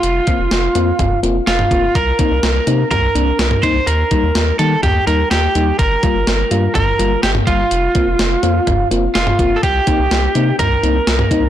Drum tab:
HH |x-x-x-x-x-x-x-x-|x-x-x-x-x-x-x-x-|x-x-x-x-x-x-x-x-|x-x-x-x-x-x-x-x-|
SD |----o-------o---|----o-------o---|----o-------o---|----o-------o---|
T2 |--------o----o--|--------o----o--|--------o-------|--------o----o--|
BD |--o-----o-----o-|o-o-----o-----o-|--o-----o-------|o-o-----o-----o-|

HH |x-x-x-x-x-x-x-x-|x-x-x-x-x-x-x-x-|
SD |----o-------o---|----o-------o---|
T2 |--------o----o--|--------o----o--|
BD |--o-----o-----o-|o-o-----o-----o-|